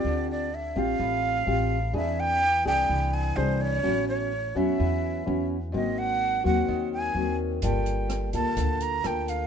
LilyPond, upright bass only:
\new Staff \with { instrumentName = "Upright bass" } { \clef bass \time 4/4 \key d \minor \tempo 4 = 127 d,4. a,,8 a,,4 a,,4 | e,4. bis,,8 bis,,4 bis,,4 | a,,4. e,8 e,4 e,4 | aes,,4. ees,8 ees,4 ees,4 |
g,,4. d,8 d,4 d,4 | }